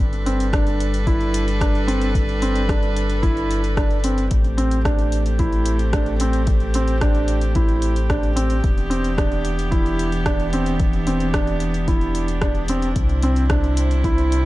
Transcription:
0.00 sub bass G1, string quartet G3 D4 A4 B4
0.13 closed hi-hat
0.26 felt piano C4, closed hi-hat
0.40 closed hi-hat
0.53 felt piano D4, kick, cross-stick, closed hi-hat
0.67 closed hi-hat
0.80 closed hi-hat
0.94 closed hi-hat
1.07 felt piano E4, kick, closed hi-hat
1.21 closed hi-hat
1.34 closed hi-hat
1.48 closed hi-hat
1.61 felt piano D4, kick, cross-stick, closed hi-hat
1.75 closed hi-hat
1.87 felt piano C4, closed hi-hat
2.02 closed hi-hat
2.15 kick, closed hi-hat
2.29 closed hi-hat
2.42 felt piano C4, closed hi-hat
2.56 closed hi-hat
2.69 felt piano D4, kick, cross-stick, closed hi-hat
2.83 closed hi-hat
2.96 closed hi-hat
3.10 closed hi-hat
3.23 felt piano E4, kick, closed hi-hat
3.37 closed hi-hat
3.51 closed hi-hat
3.64 closed hi-hat
3.77 felt piano D4, kick, cross-stick, closed hi-hat
3.91 closed hi-hat
4.04 felt piano C4, closed hi-hat
4.18 closed hi-hat
4.31 sub bass A1, string quartet A3 C4 G4, kick, closed hi-hat
4.44 closed hi-hat
4.58 felt piano C4, closed hi-hat
4.71 closed hi-hat
4.85 felt piano D4, kick, cross-stick, closed hi-hat
4.99 closed hi-hat
5.12 closed hi-hat
5.26 closed hi-hat
5.39 felt piano E4, kick, closed hi-hat
5.53 closed hi-hat
5.66 closed hi-hat
5.79 closed hi-hat
5.93 felt piano D4, kick, cross-stick, closed hi-hat
6.06 closed hi-hat
6.20 felt piano C4, closed hi-hat
6.33 closed hi-hat
6.47 kick, closed hi-hat
6.60 closed hi-hat
6.74 felt piano C4, closed hi-hat
6.88 closed hi-hat
7.01 felt piano D4, kick, cross-stick, closed hi-hat
7.15 closed hi-hat
7.28 closed hi-hat
7.41 closed hi-hat
7.55 felt piano E4, kick, closed hi-hat
7.69 closed hi-hat
7.82 closed hi-hat
7.96 closed hi-hat
8.10 felt piano D4, kick, cross-stick, closed hi-hat
8.23 closed hi-hat
8.36 felt piano C4, closed hi-hat
8.50 closed hi-hat
8.64 sub bass E1, string quartet E3 B3 D4, kick, closed hi-hat
8.78 closed hi-hat
8.90 felt piano C4, closed hi-hat
9.04 closed hi-hat
9.18 felt piano D4, kick, cross-stick, closed hi-hat
9.32 closed hi-hat
9.45 closed hi-hat
9.59 closed hi-hat
9.71 felt piano E4, kick, closed hi-hat
9.86 closed hi-hat
9.99 closed hi-hat
10.12 closed hi-hat
10.26 felt piano D4, kick, cross-stick, closed hi-hat
10.40 closed hi-hat
10.53 felt piano C4, closed hi-hat
10.66 closed hi-hat
10.80 kick, closed hi-hat
10.93 closed hi-hat
11.07 felt piano C4, closed hi-hat
11.20 closed hi-hat
11.33 felt piano D4, kick, cross-stick, closed hi-hat
11.47 closed hi-hat
11.60 closed hi-hat
11.74 closed hi-hat
11.88 felt piano E4, kick, closed hi-hat
12.01 closed hi-hat
12.15 closed hi-hat
12.28 closed hi-hat
12.42 felt piano D4, kick, cross-stick, closed hi-hat
12.55 closed hi-hat
12.68 felt piano C4, closed hi-hat
12.82 closed hi-hat
12.96 sub bass C2, string quartet C3 C4 E4, kick, closed hi-hat
13.09 closed hi-hat
13.23 felt piano C4, closed hi-hat
13.36 closed hi-hat
13.50 felt piano D4, kick, cross-stick, closed hi-hat
13.64 closed hi-hat
13.77 closed hi-hat
13.91 closed hi-hat
14.04 felt piano E4, kick, closed hi-hat
14.18 closed hi-hat
14.32 closed hi-hat

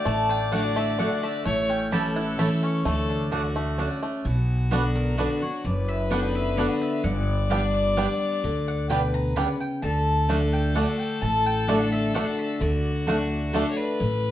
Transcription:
Already playing: five-string banjo D4, fiddle D5
0.05 upright bass A1, steel-string acoustic guitar A2, five-string banjo A3, mandolin A5
0.29 five-string banjo D4, mandolin G5
0.52 steel-string acoustic guitar D3 A3 D4 F#4, mandolin A3 F#4 D5 F#5, five-string banjo D4
0.76 five-string banjo A3, mandolin E5
0.98 steel-string acoustic guitar D3 A3 D4 F#4, mandolin A3 F#4 D5 F#5, five-string banjo D4
1.23 five-string banjo A3, mandolin E5
1.45 upright bass A1, steel-string acoustic guitar A2, five-string banjo A3, fiddle C#5
1.69 five-string banjo C#4, mandolin G5
1.91 steel-string acoustic guitar E3 A3 C#4 E4, mandolin A3 E4 C#5 A5, five-string banjo G4, fiddle A4
2.16 five-string banjo E4, mandolin F#5
2.38 steel-string acoustic guitar E3 A3 C#4 E4, mandolin A3 E4 C#5 E5 A5, five-string banjo A3
2.63 five-string banjo C#4, mandolin C#5
2.85 upright bass D2, steel-string acoustic guitar D3, five-string banjo A3, fiddle A4
3.09 five-string banjo D4
3.31 steel-string acoustic guitar D3, mandolin A3 F#4 D5 F#5, five-string banjo D4, fiddle F#4
3.56 five-string banjo A3
3.78 mandolin A3 F#4 D5 F#5, steel-string acoustic guitar C#4, five-string banjo D4
4.03 five-string banjo A3
4.25 upright bass B1, steel-string acoustic guitar B2, fiddle F#4
4.71 steel-string acoustic guitar D3 B3 D4 F#4, mandolin B3 F#4 D5 F#5, five-string banjo B3 D4
4.96 mandolin A#4
5.17 steel-string acoustic guitar D3 B3 D4 F#4, mandolin B3 F#4 B4 D5 F#5, five-string banjo B3 D4
5.42 steel-string acoustic guitar D4 F#4, mandolin C#5
5.64 upright bass F#1, steel-string acoustic guitar F#2, fiddle B4, mandolin D5
5.88 mandolin E5
6.10 steel-string acoustic guitar D3 B3 D4 F#4, mandolin B3 F#4 D5 F#5 G5, five-string banjo B3 D4
6.35 mandolin E5
6.56 steel-string acoustic guitar D3 B3 D4 F#4, mandolin B3 F#4 D5 F#5, five-string banjo B3 D4
6.82 mandolin E5
7.04 upright bass G1, steel-string acoustic guitar G2, fiddle D5, mandolin F#5
7.50 steel-string acoustic guitar G3 B3 D4 G4, five-string banjo G3 B3 D4, mandolin B3 G4 D5 G5
7.74 mandolin D5
7.97 steel-string acoustic guitar G3 B3 D4 G4, five-string banjo G3 B3 D4, mandolin B3 G4 D5 G5
8.44 upright bass D2, steel-string acoustic guitar D3
8.68 mandolin F#5
8.90 steel-string acoustic guitar B2, five-string banjo G3 B3 D4, mandolin B3 G4 D5 G5, fiddle B4
9.14 mandolin A#5
9.36 steel-string acoustic guitar C#3, five-string banjo G3 B3 D4, mandolin B3 G4 D5 G5 B5
9.60 mandolin G5
9.82 upright bass D2, steel-string acoustic guitar D3, fiddle A4, mandolin A5
10.29 steel-string acoustic guitar D3 A3 D4 F#4, mandolin A3 F#4 D5 F#5, five-string banjo A3 D4
10.53 mandolin G5
10.74 steel-string acoustic guitar D3 A3 D4 F#4, mandolin A3 F#4 D5 F#5, five-string banjo A3 D4
10.99 mandolin G5
11.22 upright bass A1, steel-string acoustic guitar A2, mandolin A5
11.46 mandolin G5
11.68 steel-string acoustic guitar D3 A3 D4 F#4, mandolin A3 F#4 D5 F#5, five-string banjo A3 D4
11.92 mandolin E5
12.14 steel-string acoustic guitar D3 A3 D4 F#4, mandolin A3 F#4 D5 F#5, five-string banjo A3 D4
12.39 mandolin E5
12.61 upright bass D2, steel-string acoustic guitar D3, fiddle F#4, mandolin D5
13.06 steel-string acoustic guitar D3 A3 D4 F#4, mandolin A3 F#4 D5 F#5, five-string banjo A3 D4
13.53 steel-string acoustic guitar D3 A3 D4 F#4, mandolin A3 F#4 D5 F#5, five-string banjo A3 D4, fiddle A4
13.71 fiddle C#5
13.77 fiddle B4
14.00 upright bass A1, steel-string acoustic guitar A2

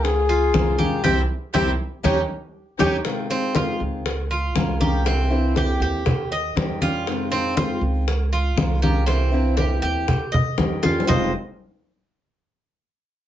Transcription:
Already playing: upright bass C#2
0.03 violin section F4, muted trumpet G#4, muted steel-string acoustic guitar stroke, high bongo, high conga
0.29 cuban tres F4, high conga
0.53 upright bass C2, steel-string acoustic guitar G#3 C#4 F4 A#4, high bongo, low bongo, high conga
0.79 steel-string acoustic guitar F3 G#3 C#4 F4 A#4, cuban tres G4, high conga
1.04 upright bass C2, steel-string acoustic guitar A#3 C4 E4, cuban tres C4 E4 G4, violin section C4 E4 G4, muted trumpet G4, low bongo, high conga
1.54 upright bass C2, steel-string acoustic guitar A#3 C4 E4, cuban tres C4 E4 G4, violin section C4 E4 G4, muted trumpet G4, low bongo, high conga
2.03 upright bass D#2, steel-string acoustic guitar A#3 C#4 D#4, violin section C#4 D#4 G4, cuban tres C#4 D#4 G4, muted trumpet G4, low bongo, high conga
2.78 upright bass D#2, steel-string acoustic guitar A#3 C#4 D#4, violin section C#4 D#4 G4, cuban tres C#4 D#4 G4, muted trumpet G4, low bongo, high conga
3.04 steel-string acoustic guitar C3 D#3 G#3 C4 F4, high bongo, high conga
3.30 steel-string acoustic guitar D#3 G#3 C4 F4, cuban tres C4, high conga
3.54 steel-string acoustic guitar D#3 G#3 C4 F4, cuban tres F4, high bongo, high conga
3.80 upright bass C#2, high conga
4.05 muted steel-string acoustic guitar stroke, high bongo, high conga
4.31 cuban tres F4, high conga
4.55 upright bass C2, steel-string acoustic guitar G#3 C#4 F4 A#4, high bongo, low bongo, high conga
4.80 steel-string acoustic guitar F3 G#3 C#4 F4 A#4, cuban tres G4, high conga
5.05 steel-string acoustic guitar C3 E3 A#3 C4 E4, cuban tres C4, high bongo, high conga
5.30 steel-string acoustic guitar E3 A#3 C4 E4, high conga
5.55 steel-string acoustic guitar E3 A#3 C4 E4, cuban tres G4, high bongo, high conga
5.80 upright bass D#2, cuban tres G4, high bongo, high conga
6.05 muted steel-string acoustic guitar stroke, high bongo, high conga, low conga
6.32 cuban tres D#5, high bongo, high conga
6.55 upright bass F2, steel-string acoustic guitar D#3 G3 C#4 G4, high bongo, low bongo, high conga
6.81 steel-string acoustic guitar G3 C#4 G4, cuban tres F4, high bongo, high conga
7.06 steel-string acoustic guitar C3 D#3 G#3 C4 F4, high bongo, high conga
7.30 steel-string acoustic guitar D#3 G#3 C4 F4, cuban tres C4, high conga
7.56 steel-string acoustic guitar D#3 G#3 C4 F4, cuban tres F4, high bongo, high conga
7.81 upright bass C#2, high conga
8.08 muted steel-string acoustic guitar stroke, high bongo, high conga
8.33 cuban tres F4, high conga
8.56 upright bass C2, steel-string acoustic guitar G#3 C#4 F4 A#4, high bongo, low bongo, high conga
8.82 steel-string acoustic guitar F3 G#3 C#4 F4 A#4, cuban tres G4, high conga
9.06 steel-string acoustic guitar C3 E3 A#3 C4 E4, cuban tres C4, high bongo, high conga
9.32 steel-string acoustic guitar E3 A#3 C4 E4, high conga
9.57 steel-string acoustic guitar E3 A#3 C4 E4, cuban tres G4, high bongo, high conga
9.82 upright bass D#2, cuban tres G4, high bongo, high conga
10.08 muted steel-string acoustic guitar stroke, high bongo, high conga, low conga
10.32 cuban tres D#5, high bongo, high conga, low conga
10.58 upright bass F2, steel-string acoustic guitar D#3 G3 C#4 G4, high bongo, low bongo, high conga
10.83 steel-string acoustic guitar G3 C#4 G4, cuban tres F4, high bongo, high conga
11.00 low bongo
11.07 upright bass F1, steel-string acoustic guitar F2 C3 D#3 G#3 C4 F4, cuban tres F4 C5 D#5, low bongo, low conga

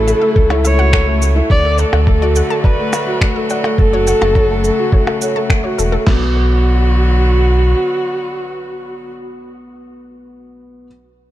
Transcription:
Already playing: analog synth bass A1, string quartet C#3 F#3 A3 E4, felt piano A3 E4 F#4 A4, viola A4
0.07 felt piano A4, synth arpeggio sound E5, shaker
0.22 felt piano A3, synth arpeggio sound E5
0.36 analog synth bass C#2, felt piano A3, synth arpeggio sound A4, kick
0.50 felt piano E4, synth arpeggio sound C#5, percussion blips
0.65 felt piano A3, viola C#5, synth arpeggio sound E5, shaker
0.79 felt piano F#4, synth arpeggio sound F#5
0.93 felt piano A4, synth arpeggio sound F#5, finger snap, kick
1.07 felt piano A3
1.21 felt piano A3, shaker
1.36 felt piano E4
1.50 analog synth bass D2, string quartet D3 F#3 F#4, felt piano A3, viola D5, synth arpeggio sound D5, kick
1.64 felt piano A4, synth arpeggio sound A4
1.78 viola A4, felt piano D5, synth arpeggio sound F#5, shaker
1.93 analog synth bass D2, felt piano A3, synth arpeggio sound F#5, percussion blips
2.07 felt piano A3, synth arpeggio sound A4, kick
2.21 felt piano F#4, synth arpeggio sound D5
2.35 felt piano A3, synth arpeggio sound F#5, shaker
2.50 felt piano A4, synth arpeggio sound A5
2.63 viola B4, felt piano D5, synth arpeggio sound A5, kick
2.79 felt piano A3
2.93 felt piano A3, percussion blips, shaker
3.07 felt piano F#4
3.21 felt piano A3, synth arpeggio sound D5, finger snap, kick
3.36 synth arpeggio sound A4, felt piano A4
3.50 felt piano D5, synth arpeggio sound F#5, shaker
3.64 felt piano A3, synth arpeggio sound F#5, percussion blips
3.78 analog synth bass F#1, string quartet C#3, viola A4, synth arpeggio sound A4, kick
3.93 felt piano F#4, synth arpeggio sound C#5
4.07 felt piano A3, synth arpeggio sound F#5, shaker
4.21 analog synth bass F#1, felt piano A4, synth arpeggio sound A5, percussion blips
4.35 felt piano C#5, synth arpeggio sound A5, kick
4.50 felt piano A3
4.64 felt piano A3, shaker
4.78 felt piano F#4
4.92 felt piano A3, synth arpeggio sound C#5, kick
5.07 felt piano A4, synth arpeggio sound A4, percussion blips
5.22 felt piano C#5, synth arpeggio sound F#5, shaker
5.36 felt piano A3, synth arpeggio sound A5
5.50 felt piano A3, synth arpeggio sound F#5, finger snap, kick
5.64 felt piano F#4, synth arpeggio sound C#5
5.78 analog synth bass E1, felt piano A3, synth arpeggio sound A4, shaker
5.92 synth arpeggio sound A4, felt piano A4
6.07 analog synth bass B1, string quartet D3 F#3 B3 F#4, felt piano B3, viola F#4, synth arpeggio sound B4, kick, snare, crash

